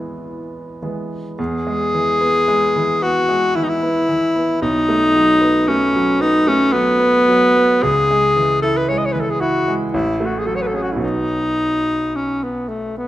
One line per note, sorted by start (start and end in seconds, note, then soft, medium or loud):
0.00 0.82 E3 soft
0.00 0.83 G#3 soft
0.00 0.83 B3 soft
0.00 0.82 E4 medium
0.82 1.35 E3 soft
0.82 1.35 G#3 soft
0.82 1.35 B3 soft
1.39 4.57 E2 medium
1.39 3.04 G#4 loud
1.67 2.10 G#3 medium
1.95 2.37 E3 soft
2.21 2.64 B3 soft
2.48 2.91 G#3 medium
2.76 3.18 E3 medium
3.02 3.45 B3 medium
3.02 3.57 F#4 medium
3.29 3.71 G#3 soft
3.56 3.99 E3 medium
3.56 3.65 E4 medium
3.64 3.71 D#4 medium
3.69 4.61 E4 medium
3.83 4.25 B3 medium
4.09 4.51 E3 soft
4.36 4.61 B3 soft
4.62 7.79 B1 medium
4.62 5.70 D#4 loud
4.89 5.30 A3 medium
5.15 5.57 F#3 medium
5.41 5.83 B3 medium
5.68 6.10 A3 medium
5.68 6.23 C#4 medium
5.95 6.36 F#3 medium
6.20 6.62 B3 medium
6.20 6.49 D#4 medium
6.47 6.89 A3 medium
6.47 6.74 C#4 medium
6.72 7.16 F#3 medium
6.72 7.84 B3 loud
7.00 7.44 B3 medium
7.28 7.72 F#3 medium
7.56 7.83 B3 medium
7.83 9.90 C#2 medium
7.83 8.62 G#4 loud
8.11 8.52 G#3 medium
8.36 8.78 E3 medium
8.62 9.05 E4 medium
8.62 8.79 A4 medium
8.78 8.90 B4 medium
8.89 9.31 G#3 medium
8.89 9.00 C#5 medium
8.98 9.07 D#5 medium
9.05 9.14 C#5 medium
9.12 9.57 E3 medium
9.12 9.22 B4 medium
9.21 9.32 A4 medium
9.30 9.42 G#4 medium
9.41 9.83 E4 medium
9.41 9.75 F#4 medium
9.68 9.94 G#3 soft
9.93 10.99 A1 medium
9.93 10.27 E4 medium
10.20 10.63 A3 soft
10.26 10.40 F#4 medium
10.39 10.48 G#4 medium
10.46 10.90 F#3 soft
10.46 10.58 A4 medium
10.56 10.63 C#5 medium
10.62 10.69 B4 medium
10.67 10.77 A4 medium
10.73 11.02 C#4 soft
10.73 10.84 G#4 medium
10.83 10.94 F#4 soft
10.92 13.08 B1 soft
10.92 11.03 E4 soft
10.97 13.08 F#3 soft
10.97 13.08 B3 soft
11.02 12.17 D#4 medium
12.16 12.45 C#4 medium
12.43 12.70 B3 medium
12.69 12.97 A3 medium
12.98 13.08 B3 medium